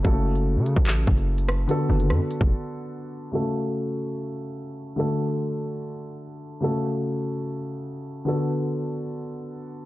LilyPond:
<<
  \new Staff \with { instrumentName = "Grand piano" } { \time 4/4 \key fis \minor \tempo 4 = 146 <cis a fis' a'>1 | <d b fis' a'>1 | <cis a fis' a'>1 | <d a fis' a'>1 |
<cis a fis' a'>1 | <d b fis' a'>1 | }
  \new Staff \with { instrumentName = "808-style bass" } { \clef bass \time 4/4 \key fis \minor fis,,4~ fis,,16 cis8 a,,8. fis,,4. | r8 fis,,8 fis,16 r8 eis,,16 r2 | r1 | r1 |
r1 | r1 | }
  \new DrumStaff \with { instrumentName = "Drums" } \drummode { \time 4/4 <hh bd>8. hh16 r8 hh16 bd16 <hc hh>8 bd16 hh16 r16 hh16 <hh ss>8 | hh8. hh16 ss8 hh16 bd16 r4 r4 | hh4 r4 r4 r4 | r4 r4 r4 r4 |
r4 r4 r4 r4 | r4 r4 r4 r4 | }
>>